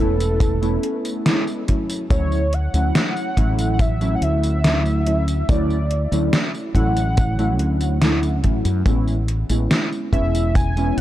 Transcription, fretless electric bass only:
0.00 E1
2.10 D2
2.74 D2
3.37 A1
4.21 D2
5.49 D2
6.12 D2
6.75 A1
7.59 D2
8.44 A1
8.65 F#2
8.86 A1
9.50 A1
10.13 E1
10.97 A1

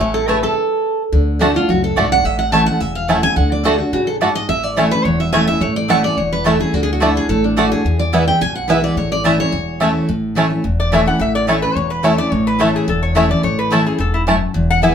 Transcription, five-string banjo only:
Already playing: C#4 E4
0.00 A3
0.14 E4
0.28 A3
0.43 A4
1.41 A3 D4 F#4
1.97 A3 D4 F#4
2.53 A3 C#4 E4
3.09 A3 C#4 E4
3.65 A3 D4 F#4
4.22 A3 D4 F#4
4.77 A3 C#4 E4
5.33 A3 C#4 E4
5.90 A3 C#4 E4
6.46 A3 C#4 E4
7.02 A3 D4 F#4
7.58 A3 D4 F#4
8.14 B3 E4
8.70 B3 E4
9.25 A3 C#4 E4
9.81 A3 C#4 E4
10.37 A3 C#4 E4
10.93 A3 C#4 E4
11.49 A3 C#4 E4
12.04 A3 C#4 E4
12.61 A3 C#4 E4
13.17 A3 C#4 E4
13.72 A3 C#4 E4
14.28 A3 C#4 E4
14.83 B3 E4

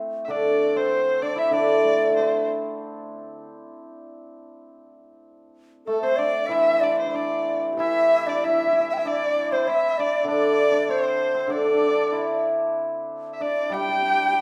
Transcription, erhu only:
0.25 E5
0.31 D5
0.77 C5
1.22 D5
1.38 E5
1.53 D5
2.16 C5
5.88 A4
6.04 C5
6.18 D5
6.52 E5
6.83 D5
6.99 C5
7.15 D5
7.80 E5
8.29 D5
8.44 E5
8.89 E5
8.98 E5
9.07 D5
9.53 C5
9.69 E5
10.00 D5
10.28 D5
10.90 C5
11.52 D5
13.33 E5
13.41 D5
13.72 G5

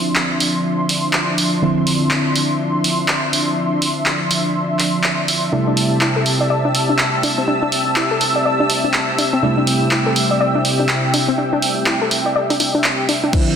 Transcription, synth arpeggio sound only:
5.53 D4
5.67 D4
6.01 E4
6.16 A4
6.40 D5
6.50 D5
6.65 D4
6.89 D4
7.23 D4
7.38 C4
7.48 D4
7.62 D4
7.97 E4
8.11 A4
8.36 D5
8.45 D5
8.60 D4
8.84 D4
9.18 D4
9.33 C4
9.43 D4
9.58 D4
9.92 E4
10.06 A4
10.31 D5
10.40 D5
10.55 D4
10.79 D4
11.14 D4
11.28 C4
11.38 D4
11.53 D4
11.87 E4
12.01 A4
12.26 D5
12.36 D5
12.50 D4
12.60 D4
12.75 D4
13.09 D4
13.23 D4
13.33 D4

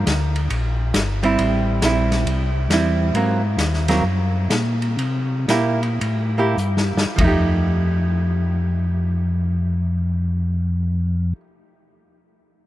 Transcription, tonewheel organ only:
0.06 D2
0.50 A#1
0.94 G1
1.39 A1
1.82 A#1
2.25 C2
2.69 E2
3.13 G#2
3.58 D#2
4.03 F#2
4.50 A#2
4.97 C3
5.48 A#2
6.01 A2
6.57 G2
6.95 G2
7.18 F2

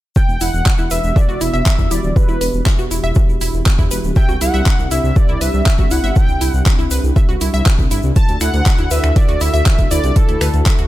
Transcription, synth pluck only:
0.41 E4
0.79 E4
0.91 B4
1.16 E5
1.29 F#4
1.41 E4
1.54 E5
1.91 E4
2.29 E4
2.41 B4
2.66 E5
2.79 F#4
2.91 E4
3.04 E5
3.41 E4
3.79 E4
3.91 B4
4.16 E5
4.29 F#4
4.41 E4
4.54 E5
4.91 E4
5.29 E4
5.41 B4
5.66 E5
5.79 F#4
5.91 E4
6.04 E5
6.41 E4
6.79 E4
6.91 B4
7.16 E5
7.29 F#4
7.41 E4
7.54 E5
7.91 E4
8.41 E4
8.79 E4
8.91 B4
9.16 E5
9.29 F#4
9.41 E4
9.54 E5
9.91 E4
10.29 E4
10.41 B4
10.66 E5
10.79 F#4

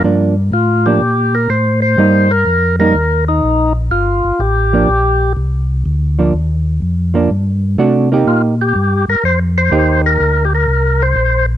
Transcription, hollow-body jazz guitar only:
0.04 F3 A#3 D4
0.86 F3 A#3 D4
1.98 G3 A#3 D#4
2.79 G3 A#3 D#4
4.73 F3 A#3 D4
6.19 F3 A#3 D4
7.14 F3 A#3 D4
7.78 A3 D4 F#4
8.12 A#3 D#4 G4
9.71 A#3 D#4 G4

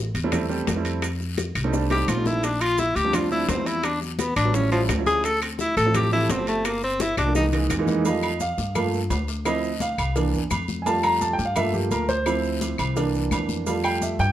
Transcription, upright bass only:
0.14 E2
0.67 F2
1.55 C2
2.08 A#1
2.95 D2
3.48 E2
4.36 A1
4.89 D2
5.77 A1
6.29 G1
7.17 C2
7.70 F2
8.58 G2
9.10 D2
9.98 C2
10.33 E2
10.51 F2
11.39 G2
11.91 D2
12.79 C2
13.31 F2
14.19 G2

